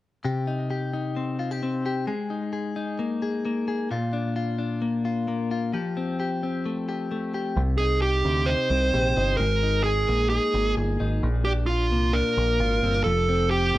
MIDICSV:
0, 0, Header, 1, 4, 480
1, 0, Start_track
1, 0, Key_signature, -3, "minor"
1, 0, Tempo, 457666
1, 258, Time_signature, 4, 2, 24, 8
1, 14452, End_track
2, 0, Start_track
2, 0, Title_t, "Lead electric guitar"
2, 0, Program_c, 0, 29
2, 8156, Note_on_c, 0, 68, 68
2, 8405, Note_off_c, 0, 68, 0
2, 8409, Note_on_c, 0, 67, 69
2, 8873, Note_on_c, 0, 72, 96
2, 8907, Note_off_c, 0, 67, 0
2, 9803, Note_off_c, 0, 72, 0
2, 9826, Note_on_c, 0, 70, 89
2, 10311, Note_off_c, 0, 70, 0
2, 10315, Note_on_c, 0, 68, 75
2, 10786, Note_off_c, 0, 68, 0
2, 10798, Note_on_c, 0, 68, 66
2, 11253, Note_off_c, 0, 68, 0
2, 12005, Note_on_c, 0, 67, 76
2, 12071, Note_off_c, 0, 67, 0
2, 12234, Note_on_c, 0, 65, 71
2, 12726, Note_on_c, 0, 70, 91
2, 12740, Note_off_c, 0, 65, 0
2, 13670, Note_off_c, 0, 70, 0
2, 13674, Note_on_c, 0, 69, 88
2, 14162, Note_off_c, 0, 69, 0
2, 14166, Note_on_c, 0, 67, 75
2, 14452, Note_off_c, 0, 67, 0
2, 14452, End_track
3, 0, Start_track
3, 0, Title_t, "Clean electric guitar"
3, 0, Program_c, 1, 27
3, 256, Note_on_c, 1, 48, 62
3, 263, Note_on_c, 1, 67, 53
3, 496, Note_on_c, 1, 63, 48
3, 726, Note_off_c, 1, 67, 0
3, 739, Note_on_c, 1, 67, 56
3, 976, Note_off_c, 1, 63, 0
3, 980, Note_on_c, 1, 63, 52
3, 1222, Note_on_c, 1, 60, 50
3, 1456, Note_off_c, 1, 67, 0
3, 1461, Note_on_c, 1, 65, 54
3, 1585, Note_off_c, 1, 65, 0
3, 1585, Note_on_c, 1, 67, 47
3, 1695, Note_off_c, 1, 60, 0
3, 1708, Note_on_c, 1, 60, 53
3, 1935, Note_off_c, 1, 67, 0
3, 1948, Note_on_c, 1, 67, 57
3, 2174, Note_on_c, 1, 56, 62
3, 2175, Note_off_c, 1, 48, 0
3, 2175, Note_off_c, 1, 67, 0
3, 2179, Note_on_c, 1, 68, 56
3, 2225, Note_off_c, 1, 63, 0
3, 2229, Note_off_c, 1, 60, 0
3, 2414, Note_on_c, 1, 63, 47
3, 2639, Note_off_c, 1, 68, 0
3, 2652, Note_on_c, 1, 68, 50
3, 2883, Note_off_c, 1, 63, 0
3, 2896, Note_on_c, 1, 63, 49
3, 3136, Note_on_c, 1, 58, 51
3, 3367, Note_off_c, 1, 68, 0
3, 3380, Note_on_c, 1, 68, 60
3, 3618, Note_off_c, 1, 58, 0
3, 3622, Note_on_c, 1, 58, 49
3, 3846, Note_off_c, 1, 68, 0
3, 3858, Note_on_c, 1, 68, 61
3, 4094, Note_off_c, 1, 56, 0
3, 4097, Note_off_c, 1, 68, 0
3, 4098, Note_on_c, 1, 46, 69
3, 4104, Note_on_c, 1, 65, 56
3, 4143, Note_off_c, 1, 63, 0
3, 4146, Note_off_c, 1, 58, 0
3, 4331, Note_on_c, 1, 62, 50
3, 4569, Note_off_c, 1, 65, 0
3, 4573, Note_on_c, 1, 65, 54
3, 4796, Note_off_c, 1, 62, 0
3, 4809, Note_on_c, 1, 62, 52
3, 5052, Note_on_c, 1, 58, 51
3, 5292, Note_off_c, 1, 65, 0
3, 5296, Note_on_c, 1, 65, 58
3, 5524, Note_off_c, 1, 58, 0
3, 5537, Note_on_c, 1, 58, 56
3, 5777, Note_off_c, 1, 65, 0
3, 5781, Note_on_c, 1, 65, 59
3, 6015, Note_off_c, 1, 65, 0
3, 6015, Note_on_c, 1, 53, 73
3, 6016, Note_off_c, 1, 46, 0
3, 6020, Note_on_c, 1, 67, 56
3, 6060, Note_off_c, 1, 62, 0
3, 6064, Note_off_c, 1, 58, 0
3, 6259, Note_on_c, 1, 60, 51
3, 6494, Note_off_c, 1, 67, 0
3, 6499, Note_on_c, 1, 67, 58
3, 6741, Note_off_c, 1, 60, 0
3, 6745, Note_on_c, 1, 60, 53
3, 6980, Note_on_c, 1, 57, 50
3, 7218, Note_off_c, 1, 67, 0
3, 7222, Note_on_c, 1, 67, 59
3, 7449, Note_off_c, 1, 57, 0
3, 7462, Note_on_c, 1, 57, 55
3, 7697, Note_off_c, 1, 67, 0
3, 7701, Note_on_c, 1, 67, 60
3, 7936, Note_off_c, 1, 53, 0
3, 7940, Note_on_c, 1, 48, 64
3, 7987, Note_off_c, 1, 57, 0
3, 7987, Note_off_c, 1, 67, 0
3, 7989, Note_off_c, 1, 60, 0
3, 8179, Note_on_c, 1, 63, 48
3, 8417, Note_on_c, 1, 67, 56
3, 8654, Note_on_c, 1, 60, 53
3, 8893, Note_off_c, 1, 63, 0
3, 8897, Note_on_c, 1, 63, 53
3, 9119, Note_off_c, 1, 60, 0
3, 9131, Note_on_c, 1, 60, 53
3, 9364, Note_off_c, 1, 67, 0
3, 9376, Note_on_c, 1, 67, 58
3, 9612, Note_off_c, 1, 63, 0
3, 9617, Note_on_c, 1, 63, 52
3, 9856, Note_on_c, 1, 56, 64
3, 9859, Note_off_c, 1, 48, 0
3, 9902, Note_off_c, 1, 60, 0
3, 9905, Note_off_c, 1, 63, 0
3, 9905, Note_off_c, 1, 67, 0
3, 10102, Note_on_c, 1, 63, 47
3, 10338, Note_on_c, 1, 68, 59
3, 10575, Note_on_c, 1, 58, 50
3, 10802, Note_off_c, 1, 63, 0
3, 10814, Note_on_c, 1, 63, 56
3, 11060, Note_off_c, 1, 58, 0
3, 11064, Note_on_c, 1, 58, 54
3, 11284, Note_off_c, 1, 68, 0
3, 11297, Note_on_c, 1, 68, 57
3, 11524, Note_off_c, 1, 63, 0
3, 11537, Note_on_c, 1, 63, 54
3, 11776, Note_off_c, 1, 56, 0
3, 11781, Note_on_c, 1, 46, 67
3, 11824, Note_off_c, 1, 63, 0
3, 11824, Note_off_c, 1, 68, 0
3, 11828, Note_off_c, 1, 58, 0
3, 12021, Note_on_c, 1, 62, 52
3, 12264, Note_on_c, 1, 65, 58
3, 12501, Note_on_c, 1, 58, 52
3, 12721, Note_off_c, 1, 62, 0
3, 12734, Note_on_c, 1, 62, 56
3, 12966, Note_off_c, 1, 58, 0
3, 12979, Note_on_c, 1, 58, 53
3, 13212, Note_off_c, 1, 65, 0
3, 13216, Note_on_c, 1, 65, 57
3, 13454, Note_off_c, 1, 62, 0
3, 13458, Note_on_c, 1, 60, 53
3, 13575, Note_off_c, 1, 60, 0
3, 13575, Note_on_c, 1, 62, 42
3, 13693, Note_on_c, 1, 53, 68
3, 13698, Note_off_c, 1, 46, 0
3, 13743, Note_off_c, 1, 62, 0
3, 13744, Note_off_c, 1, 65, 0
3, 13745, Note_off_c, 1, 58, 0
3, 13938, Note_on_c, 1, 60, 49
3, 14176, Note_on_c, 1, 67, 57
3, 14418, Note_on_c, 1, 57, 50
3, 14452, Note_off_c, 1, 53, 0
3, 14452, Note_off_c, 1, 57, 0
3, 14452, Note_off_c, 1, 60, 0
3, 14452, Note_off_c, 1, 67, 0
3, 14452, End_track
4, 0, Start_track
4, 0, Title_t, "Picked electric bass"
4, 0, Program_c, 2, 34
4, 7934, Note_on_c, 2, 36, 86
4, 8619, Note_off_c, 2, 36, 0
4, 8649, Note_on_c, 2, 38, 75
4, 8958, Note_off_c, 2, 38, 0
4, 9125, Note_on_c, 2, 36, 77
4, 9334, Note_off_c, 2, 36, 0
4, 9372, Note_on_c, 2, 34, 84
4, 9578, Note_off_c, 2, 34, 0
4, 9615, Note_on_c, 2, 31, 78
4, 9820, Note_off_c, 2, 31, 0
4, 9851, Note_on_c, 2, 32, 96
4, 10538, Note_off_c, 2, 32, 0
4, 10580, Note_on_c, 2, 34, 74
4, 10884, Note_off_c, 2, 34, 0
4, 11055, Note_on_c, 2, 32, 81
4, 11260, Note_off_c, 2, 32, 0
4, 11294, Note_on_c, 2, 31, 85
4, 11499, Note_off_c, 2, 31, 0
4, 11540, Note_on_c, 2, 32, 77
4, 11742, Note_off_c, 2, 32, 0
4, 11776, Note_on_c, 2, 34, 90
4, 12506, Note_off_c, 2, 34, 0
4, 12506, Note_on_c, 2, 36, 70
4, 12808, Note_off_c, 2, 36, 0
4, 12978, Note_on_c, 2, 34, 83
4, 13181, Note_off_c, 2, 34, 0
4, 13211, Note_on_c, 2, 32, 77
4, 13417, Note_off_c, 2, 32, 0
4, 13453, Note_on_c, 2, 31, 75
4, 13658, Note_off_c, 2, 31, 0
4, 13693, Note_on_c, 2, 29, 94
4, 14378, Note_off_c, 2, 29, 0
4, 14414, Note_on_c, 2, 31, 74
4, 14452, Note_off_c, 2, 31, 0
4, 14452, End_track
0, 0, End_of_file